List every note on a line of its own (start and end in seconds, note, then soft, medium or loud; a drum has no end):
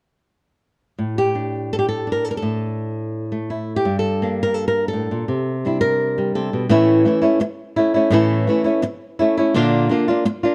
0.99 2.39 A2 soft
1.18 1.73 G4 medium
1.35 2.07 D4 soft
1.73 1.78 A4 medium
1.79 1.86 G4 medium
1.89 2.12 A4 medium
2.07 3.53 D4 soft
2.12 2.24 A#4 medium
2.24 2.30 A4 medium
2.31 2.37 A#4 medium
2.37 3.24 A4 medium
2.42 3.85 A2 medium
3.32 3.83 A3 soft
3.50 3.76 E4 soft
3.76 3.99 G4 medium
3.85 5.25 G2 medium
3.99 4.42 A4 medium
4.22 5.26 A#3 soft
4.22 5.27 D4 soft
4.43 4.54 A#4 medium
4.54 4.67 A4 medium
4.68 4.88 A#4 medium
4.88 5.56 A4 medium
4.93 5.10 A2 soft
5.11 5.28 A#2 soft
5.28 6.34 C3 medium
5.65 6.17 G3 soft
5.65 6.69 D4 soft
5.65 5.80 E4 soft
5.81 6.35 A#4 medium
6.18 6.70 G3 soft
6.35 6.53 C3 soft
6.35 6.62 A4 medium
6.53 6.69 B2 soft
6.69 7.05 A2 medium
6.69 7.04 E3 medium
6.69 7.05 A3 medium
6.69 7.05 C#4 medium
6.69 7.06 E4 medium
7.05 7.22 E3 medium
7.05 7.23 A3 medium
7.05 7.21 C#4 soft
7.05 7.20 E4 medium
7.22 7.40 A3 soft
7.22 7.40 C#4 soft
7.22 7.40 E4 soft
7.40 muted nylon-string guitar stroke medium
7.76 7.95 A3 soft
7.76 7.94 C#4 soft
7.76 7.93 E4 medium
7.94 8.11 A3 soft
7.94 8.12 C#4 soft
7.94 8.11 E4 soft
8.11 8.46 A2 medium
8.11 8.46 E3 medium
8.11 8.47 A3 medium
8.11 8.48 C#4 medium
8.11 8.48 E4 medium
8.47 8.65 E3 medium
8.47 8.65 A3 soft
8.47 8.64 C#4 soft
8.47 8.63 E4 medium
8.64 8.82 A3 soft
8.64 8.82 C#4 soft
8.64 8.82 E4 soft
8.82 muted nylon-string guitar stroke medium
9.19 9.37 A3 medium
9.19 9.37 C#4 soft
9.19 9.36 E4 medium
9.37 9.55 A3 soft
9.37 9.55 C#4 soft
9.37 9.54 E4 medium
9.54 9.89 A#2 medium
9.54 9.88 D3 medium
9.54 9.89 A#3 medium
9.54 9.90 D4 loud
9.54 9.90 F4 medium
9.89 10.07 D3 medium
9.89 10.07 A#3 medium
9.89 10.08 D4 medium
9.89 10.07 F4 medium
10.08 10.25 A#3 soft
10.08 10.25 D4 soft
10.08 10.25 F4 medium
10.25 muted nylon-string guitar stroke medium
10.43 10.55 A#3 soft
10.43 10.55 D4 medium
10.43 10.55 F4 medium